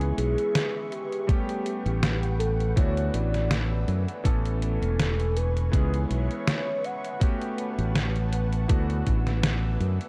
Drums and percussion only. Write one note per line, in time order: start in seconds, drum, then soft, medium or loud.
0.01 closed hi-hat soft
0.18 closed hi-hat medium
0.38 closed hi-hat soft
0.55 snare loud
0.55 closed hi-hat medium
0.92 closed hi-hat soft
1.12 closed hi-hat soft
1.29 kick loud
1.29 closed hi-hat medium
1.49 closed hi-hat soft
1.66 closed hi-hat medium
1.86 closed hi-hat soft
2.03 snare loud
2.03 closed hi-hat medium
2.23 closed hi-hat soft
2.40 closed hi-hat medium
2.60 closed hi-hat soft
2.77 kick loud
2.77 closed hi-hat medium
2.97 closed hi-hat soft
3.14 closed hi-hat medium
3.34 snare soft
3.34 closed hi-hat soft
3.51 snare loud
3.51 closed hi-hat medium
3.88 closed hi-hat soft
4.08 closed hi-hat soft
4.25 kick loud
4.25 closed hi-hat medium
4.46 closed hi-hat soft
4.62 closed hi-hat medium
4.83 closed hi-hat soft
5.00 snare loud
5.00 closed hi-hat medium
5.20 closed hi-hat soft
5.37 closed hi-hat medium
5.57 closed hi-hat soft
5.73 kick loud
5.73 closed hi-hat medium
5.94 closed hi-hat soft
6.11 closed hi-hat medium
6.31 closed hi-hat soft
6.48 snare loud
6.48 closed hi-hat medium
6.84 closed hi-hat soft
7.05 closed hi-hat soft
7.21 kick loud
7.21 closed hi-hat medium
7.42 closed hi-hat soft
7.58 closed hi-hat medium
7.79 closed hi-hat soft
7.95 snare loud
7.95 closed hi-hat medium
8.16 closed hi-hat soft
8.33 closed hi-hat medium
8.53 closed hi-hat soft
8.69 kick loud
8.69 closed hi-hat medium
8.90 closed hi-hat soft
9.07 kick medium
9.07 closed hi-hat medium
9.27 snare soft
9.27 closed hi-hat soft
9.43 snare loud
9.43 closed hi-hat medium
9.81 closed hi-hat soft
10.01 closed hi-hat soft